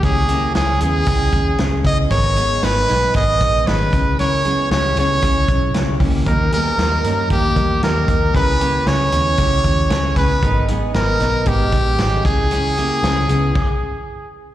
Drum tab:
CC |--------|--------|--------|--------|
HH |xxxxxxxx|xxxxxxxx|xxxxxxxo|xxxxxxxx|
SD |--o---o-|--oo--o-|--o---o-|--o---o-|
BD |o---oo-o|o---oo-o|----oo-o|o---oo-o|

CC |--------|--------|----x---|
HH |xxxxxxxx|xxxxxxxx|xxxx----|
SD |--o---o-|--oo--o-|--o-----|
BD |o---oo-o|o---oo-o|----o---|